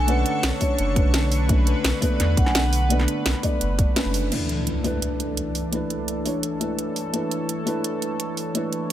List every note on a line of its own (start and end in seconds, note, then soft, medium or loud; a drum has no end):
0.00 0.24 B1 loud
0.00 4.28 D3 medium
0.00 0.06 A3 medium
0.00 2.02 B3 medium
0.00 0.08 C#4 medium
0.00 0.08 D4 medium
0.00 1.29 A4 medium
0.00 0.10 B4 loud
0.00 4.28 C#6 medium
0.06 0.58 A3 medium
0.06 0.59 C#4 medium
0.06 0.59 D4 medium
0.06 0.60 B4 loud
0.06 0.45 F#5 loud
0.06 closed hi-hat medium
0.26 closed hi-hat medium
0.43 0.51 B1 loud
0.43 0.52 C#5 medium
0.43 snare loud
0.43 closed hi-hat medium
0.60 0.93 A3 medium
0.60 0.94 C#4 medium
0.60 0.94 D4 medium
0.60 1.28 C#5 medium
0.60 0.94 C#5 medium
0.60 kick medium
0.60 open hi-hat medium
0.79 1.04 F#1 loud
0.79 closed hi-hat medium
0.95 1.46 A3 medium
0.95 1.47 C#4 medium
0.95 1.47 D4 medium
0.95 1.48 B4 medium
0.95 kick loud
0.95 closed hi-hat medium
1.05 1.74 B1 loud
1.14 snare loud
1.14 closed hi-hat medium
1.32 4.29 B4 medium
1.32 open hi-hat medium
1.48 1.99 A3 medium
1.48 2.00 C#4 medium
1.48 2.00 D4 medium
1.48 2.01 B4 medium
1.48 kick loud
1.48 closed hi-hat loud
1.67 2.00 B4 medium
1.67 closed hi-hat medium
1.84 1.92 B1 loud
1.84 snare loud
1.84 closed hi-hat loud
2.00 2.87 A3 medium
2.00 2.88 B3 medium
2.00 2.88 D4 medium
2.00 2.89 B4 loud
2.00 2.39 D5 loud
2.00 kick medium
2.00 open hi-hat medium
2.20 2.36 E2 loud
2.20 snare soft
2.20 closed hi-hat loud
2.37 3.07 B1 loud
2.37 2.45 F#5 loud
2.37 kick loud
2.37 closed hi-hat medium
2.45 2.52 G#5 medium
2.45 snare soft
2.52 2.92 F#5 loud
2.52 snare loud
2.52 closed hi-hat loud
2.73 open hi-hat medium
2.89 3.40 A3 medium
2.89 3.41 B3 medium
2.89 3.41 D4 medium
2.89 3.42 B4 loud
2.89 3.92 D5 medium
2.89 closed hi-hat loud
2.99 snare soft
3.08 closed hi-hat medium
3.26 3.34 B1 loud
3.26 snare loud
3.26 closed hi-hat loud
3.35 snare soft
3.43 3.76 A3 medium
3.43 3.77 B3 medium
3.43 3.77 D4 medium
3.43 3.77 D5 medium
3.43 kick medium
3.43 open hi-hat medium
3.61 3.86 F#1 loud
3.61 closed hi-hat loud
3.79 kick loud
3.79 closed hi-hat medium
3.95 4.29 A3 medium
3.95 4.29 C#4 medium
3.95 4.30 D4 medium
3.95 4.30 B4 loud
3.95 snare loud
3.95 closed hi-hat loud
4.05 4.30 F#1 loud
4.14 open hi-hat medium
4.30 8.92 E3 medium
4.30 4.81 A3 medium
4.30 4.82 D4 medium
4.30 7.11 D4 medium
4.30 4.83 E4 medium
4.30 8.92 A4 medium
4.30 4.83 B4 medium
4.30 closed hi-hat medium
4.30 crash medium
4.30 impact medium
4.49 closed hi-hat medium
4.67 closed hi-hat loud
4.83 5.70 A3 medium
4.83 5.70 D4 medium
4.83 5.71 E4 medium
4.83 5.71 B4 loud
4.83 open hi-hat medium
5.02 closed hi-hat medium
5.20 closed hi-hat medium
5.37 closed hi-hat medium
5.55 open hi-hat medium
5.71 6.23 A3 medium
5.71 6.23 D4 medium
5.71 6.24 E4 medium
5.71 6.25 B4 medium
5.71 closed hi-hat medium
5.90 closed hi-hat medium
6.08 closed hi-hat medium
6.25 6.58 A3 medium
6.25 6.59 D4 medium
6.25 6.59 E4 medium
6.25 6.59 C#5 medium
6.25 open hi-hat medium
6.43 closed hi-hat medium
6.59 7.11 A3 medium
6.59 7.12 D4 medium
6.59 7.12 E4 medium
6.59 7.13 B4 medium
6.59 closed hi-hat medium
6.79 closed hi-hat medium
6.96 open hi-hat medium
7.12 7.64 A3 medium
7.12 7.64 D4 medium
7.12 7.65 E4 medium
7.12 7.66 B4 medium
7.12 8.92 C#5 medium
7.12 closed hi-hat medium
7.31 closed hi-hat medium
7.49 closed hi-hat medium
7.65 8.52 A3 medium
7.65 8.53 D4 medium
7.65 8.53 E4 medium
7.65 8.54 B4 loud
7.65 open hi-hat medium
7.84 closed hi-hat medium
8.02 closed hi-hat medium
8.20 closed hi-hat medium
8.37 open hi-hat medium
8.54 8.92 A3 medium
8.54 8.92 D4 medium
8.54 8.92 E4 medium
8.54 8.92 B4 medium
8.54 closed hi-hat medium
8.73 closed hi-hat medium